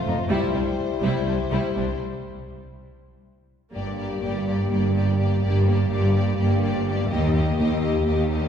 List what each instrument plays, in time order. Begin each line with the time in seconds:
Already playing: french horn section A3 F4, violin section C5
0.06 double bass section F1, cello section F2, viola section A3, violin section D#4
0.30 cello section C2, double bass section C2, viola section G3, french horn section G3 E4, violin section E4 C5
0.54 cello section C2, double bass section C2, viola section G3, violin section D4
1.02 cello section C2, double bass section C2, viola section G3, violin section E4
1.27 cello section C2, double bass section C2, viola section G3, violin section D4
1.51 cello section C2, double bass section C2, viola section G3, violin section E4
1.76 cello section C2, double bass section C2, viola section G3, violin section D4
3.72 double bass section G1, cello section G2, viola section A#3, french horn section A#3 G4, violin section G4 D5
3.98 viola section A#3, violin section G4 D5
4.21 double bass section G1, cello section G2, viola section A#3, violin section G4 D5
4.46 viola section A#3, violin section G4 D5
4.69 double bass section G1, cello section G2, viola section A#3, violin section G4 D5
4.94 viola section A#3, violin section G4 D5
5.18 viola section A#3, violin section G4 D5
5.42 double bass section G1, cello section G2, viola section A#3, violin section G4 D5
5.66 viola section A#3, violin section G4 D5
5.90 double bass section G1, cello section G2, viola section A#3, violin section G4 D5
6.13 viola section A#3, violin section G4 D5
6.37 double bass section G1, cello section G2, viola section A#3, violin section G4 D5
6.61 viola section A#3, violin section G4 D5
6.85 viola section A#3, violin section G4 D5
7.10 cello section D#2, double bass section D#2, viola section A#3, french horn section A#3 G4, violin section G4 D#5
7.33 viola section A#3, violin section G4 D#5
7.58 cello section D#2, double bass section D#2, viola section A#3, violin section G4 D#5
7.81 viola section A#3, violin section G4 D#5
8.05 cello section D#2, double bass section D#2, viola section A#3, violin section G4 D#5
8.30 viola section A#3, violin section G4 D#5